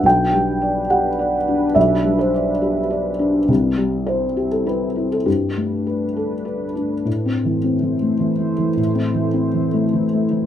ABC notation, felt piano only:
X:1
M:3/4
L:1/16
Q:1/4=104
K:Ador
V:1 name="Felt piano"
g6 f6 | e3 c z8 | z4 c3 A B3 A | G8- G2 z2 |
z12 | z12 |]
V:2 name="Felt piano"
B,,,2 G,2 d2 G2 d2 D2 | B,,,2 G,2 d2 G2 d2 D2 | C,,2 G,4 G2 C2 E2 | G,,2 A,2 B2 A2 B2 D2 |
(3A,,2 C2 E,2 (3C2 E,2 A,2 (3E,2 A,2 E,2 | (3A,,2 C2 E,2 (3C2 E,2 A,2 (3E,2 A,2 E,2 |]